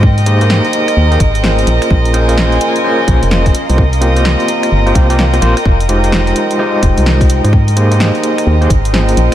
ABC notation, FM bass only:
X:1
M:4/4
L:1/16
Q:"Swing 16ths" 1/4=128
K:Ab
V:1 name="FM bass" clef=bass
A,,4- A,, z3 E,,2 A,,,4 B,,, z | B,,,6 z4 B,,, F,,,3 z C,,- | C,,4- C,, z3 G,,,2 C,,4 B,,, z | F,,,6 z4 F,,, C,,4 A,,- |
A,,4- A,, z3 E,,2 A,,,4 B,,, z |]